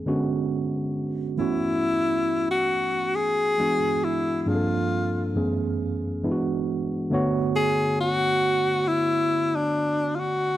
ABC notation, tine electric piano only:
X:1
M:4/4
L:1/8
Q:"Swing 16ths" 1/4=68
K:Bdor
V:1 name="Tine electric piano"
[D,G,B,CF]3 [E,A,B,CF]4- [E,A,B,CF] | [E,G,B,DF]2 [=G,,=F,_B,=CD^GA]2 [^F,,E,A,=B,^CG]2 [E,G,B,DEF]2 | [D,A,B,Fc]8 |]